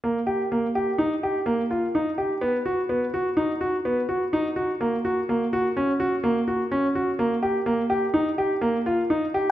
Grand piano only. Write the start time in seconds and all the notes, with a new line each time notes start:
0.04 A#3
0.27 G4
0.52 A#3
0.75 G4
0.98 D#4
1.23 G4
1.46 A#3
1.71 F4
1.95 D#4
2.18 G4
2.41 B3
2.66 F#4
2.89 B3
3.14 F#4
3.37 D#4
3.61 F#4
3.85 B3
4.09 F#4
4.33 D#4
4.56 F#4
4.81 A#3
5.05 F#4
5.29 A#3
5.53 F#4
5.77 C#4
6.00 F#4
6.24 A#3
6.48 F#4
6.71 C#4
6.95 F#4
7.19 A#3
7.43 G4
7.66 A#3
7.90 G4
8.14 D#4
8.38 G4
8.61 A#3
8.86 F4
9.10 D#4
9.34 G4